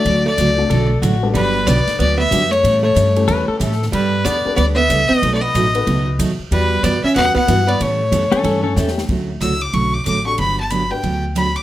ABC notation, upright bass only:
X:1
M:4/4
L:1/8
Q:"Swing" 1/4=186
K:Glyd
V:1 name="Upright bass" clef=bass
D,,2 C,,2 B,,,2 A,,,2 | G,,,2 B,,, z D,,2 F,,2 | A,,2 G,,2 E,, z A,,2 | G,,2 E,, z D,,2 C,, z |
B,,,2 A,,,2 C,,2 ^D,, z | E,,2 F,, z E,, z G,,2 | A,,2 F,, z G,,2 E,,2 | D,,2 C,,2 B,,,2 A,,,2 |
G,,,4 D,,4 |]